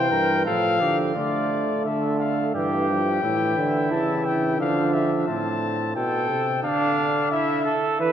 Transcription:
Already playing: bass trombone C3, trombone E3, flugelhorn C5, trumpet G5
0.11 bass trombone G2, flugelhorn A#4
0.46 bass trombone A2, trombone F3, flugelhorn A4, trumpet F5
0.81 bass trombone D3, flugelhorn G4
1.15 bass trombone D3, trombone A3, flugelhorn F4, trumpet D5
1.85 bass trombone D3, flugelhorn A4, trumpet E5
2.20 trumpet F5
2.54 bass trombone G2, trombone E3, flugelhorn G4, trumpet G5
2.89 trombone F3
3.23 bass trombone A2, trombone E3, flugelhorn E4
3.57 bass trombone D3
3.91 trombone C#3, bass trombone E3, trumpet A5
4.25 trumpet G5
4.60 bass trombone D3, trombone F3, flugelhorn D4, trumpet F5
4.94 trumpet E5
5.28 bass trombone A2, flugelhorn C4, trumpet A5
5.96 bass trombone B2, flugelhorn A4, trumpet G5
6.30 bass trombone C3
6.63 bass trombone D3, flugelhorn D4, trumpet F5
7.32 flugelhorn E4, trumpet E5
7.65 flugelhorn A4
8.00 bass trombone E3, flugelhorn B4, trumpet E5

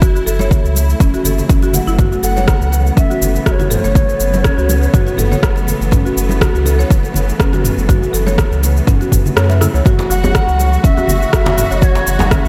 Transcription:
Already playing: sub bass F#1, string section C#3 E3 F#3 A3 E4
0.02 marimba F#4, kick, muted conga, high conga, cabasa
0.15 marimba F#4, cabasa
0.26 sub bass F#1, marimba A4, cabasa
0.39 marimba C#5, muted conga, high conga, cabasa
0.51 kick, low conga, cabasa
0.65 sub bass C#2, cabasa
0.75 muted conga, high conga, cabasa
0.90 cabasa
1.00 sub bass E1, marimba C#4, kick, high conga, cabasa
1.14 marimba F#4, muted conga, cabasa
1.25 sub bass F#1, marimba A4, low conga, cabasa
1.38 low conga, cabasa
1.49 sub bass F#1, marimba C#4, kick, cabasa
1.62 marimba F#4, muted conga, cabasa
1.73 marimba F#5, low conga, cabasa
1.87 sub bass F#1, marimba E4, cabasa
1.98 string section B3, marimba F#4, kick, mid tom, muted conga, cabasa
2.12 marimba F#4, cabasa
2.23 sub bass F#1, marimba A4, bansuri F#5, cabasa
2.37 marimba C#5, muted conga, high conga, cabasa
2.47 kick, cross-stick, low conga, cabasa
2.61 sub bass C#2, cabasa
2.72 muted conga, high conga, cabasa
2.87 cabasa
2.97 sub bass F#1, marimba C#4, bansuri E5, kick, cabasa
3.10 marimba F#4, muted conga, cabasa
3.21 sub bass F#1, low conga, cabasa
3.36 cabasa
3.46 sub bass F#1, marimba F#4, bansuri E5, kick, cross-stick, cabasa
3.51 bansuri C#5
3.59 marimba F#4, muted conga, low conga, cabasa
3.70 marimba A4, bansuri C#5, mid tom, cabasa
3.84 sub bass F#1, marimba C#5, cabasa
3.95 kick, muted conga, high conga, cabasa
4.09 cabasa
4.20 sub bass F#1, cabasa
4.34 muted conga, high conga, cabasa
4.44 marimba C#4, kick, cross-stick, low conga, cabasa
4.58 sub bass C#2, marimba F#4, cabasa
4.69 muted conga, high conga, cabasa
4.83 cabasa
4.94 sub bass F#1, marimba F#4, kick, mid tom, high conga, cabasa
5.07 marimba F#4, muted conga, cabasa
5.17 sub bass F#1, marimba A4, mid tom, low conga, cabasa
5.32 marimba C#5, low conga, cabasa
5.43 sub bass F#1, kick, cross-stick, cabasa
5.56 muted conga, cabasa
5.67 low conga, cabasa
5.81 sub bass F#1, cabasa
5.91 marimba C#4, kick, mid tom, muted conga, cabasa
6.05 marimba F#4, cabasa
6.17 sub bass F#1, cabasa
6.29 muted conga, high conga, cabasa
6.41 marimba F#4, kick, cross-stick, low conga, cabasa
6.55 sub bass C#2, marimba F#4, cabasa
6.66 marimba A4, muted conga, high conga, cabasa
6.79 marimba C#5, cabasa
6.90 sub bass F#1, kick, cabasa
7.03 muted conga, cabasa
7.14 sub bass F#1, low conga, cabasa
7.29 cabasa
7.40 sub bass F#1, marimba C#4, kick, cross-stick, cabasa
7.53 marimba F#4, muted conga, low conga, cabasa
7.64 mid tom, cabasa
7.78 sub bass F#1, cabasa
7.89 marimba F#4, kick, mid tom, muted conga, high conga, cabasa
8.02 marimba F#4, cabasa
8.13 sub bass F#1, marimba A4, cabasa
8.27 marimba C#5, muted conga, high conga, cabasa
8.38 kick, cross-stick, low conga, cabasa
8.51 sub bass C#2, cabasa
8.63 muted conga, high conga, cabasa
8.77 cabasa
8.87 sub bass F#1, marimba C#4, kick, mid tom, high conga, cabasa
9.01 marimba F#4, muted conga, cabasa
9.12 sub bass F#1, kick, mid tom, low conga, cabasa
9.26 low conga, cabasa
9.36 sub bass F#2, marimba C#5, cross-stick, cabasa
9.50 marimba E5, muted conga, cabasa
9.61 marimba E4, cross-stick, low conga, cabasa
9.74 sub bass C#2, marimba C#5, high conga, cabasa
9.85 marimba F#4, string section F#4, kick, mid tom, muted conga, cabasa
9.99 marimba F#4, djembe slap, cabasa
10.10 sub bass F#1, marimba F#4, bansuri F#5, cabasa
10.23 marimba C#5, muted conga, high conga, djembe tone, cabasa
10.35 kick, cross-stick, low conga, cabasa
10.48 sub bass C#2, cabasa
10.59 muted conga, high conga, cabasa
10.73 cabasa
10.84 sub bass F#1, marimba C#4, bansuri E5, kick, cabasa
10.97 marimba F#4, muted conga, djembe tone, cabasa
11.07 sub bass F#1, djembe tone, low conga, cabasa
11.22 cabasa
11.33 sub bass F#1, marimba F#4, bansuri E5, kick, cross-stick, cabasa
11.46 marimba F#4, djembe slap, muted conga, djembe tone, low conga, cabasa
11.58 marimba F#4, mid tom, cabasa
11.71 sub bass F#1, marimba C#5, cabasa
11.81 bansuri C#5, kick, muted conga, high conga, cabasa
11.95 djembe slap, cabasa
12.07 sub bass F#1, cabasa
12.19 bansuri F#5, muted conga, djembe slap, djembe tone, high conga, cabasa
12.25 bansuri E5
12.31 marimba C#4, kick, cross-stick, low conga, cabasa
12.45 sub bass C#2, marimba F#4, cabasa

